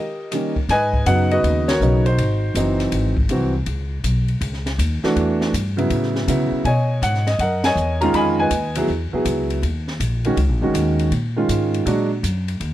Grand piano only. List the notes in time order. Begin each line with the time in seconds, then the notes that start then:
Already playing: G4 A#4 D#5
0.32 D#3 G3 A#3 C#4
0.70 B4 D#5 G#5
1.06 C#3 F#3 B3 D#4 F#5
1.32 F#4 B4 D#5
1.68 F#4 A#4 C#5
1.81 C#3 F#3 B3 D#4
2.06 D#4 F#4 C5
2.55 E3 F#3 C4 D#4
3.30 E3 F#3 C4 F#4
5.04 E3 A3 D4 F#4
5.77 C#3 F#3 B3 E4
6.27 C#3 F#3 B3 E4
6.65 C#5 D#5 G#5
7.03 F#5
7.27 D#5
7.40 A#4 D#5 F#5
7.65 C#5 D#5 G#5
8.01 D#3 G#3 C#4 F4 A#5
8.15 D#5 G#5 B5
8.40 B4 D#5 G#5
8.77 F#3 B3 E4 G#4
9.13 F#3 B3 E4 G#4
10.25 D#3 G#3 C#4 F#4
10.62 D#3 G#3 C#4 F#4
11.36 D#3 G#3 C#4 F4
11.86 F#3 G#3 D4 F#4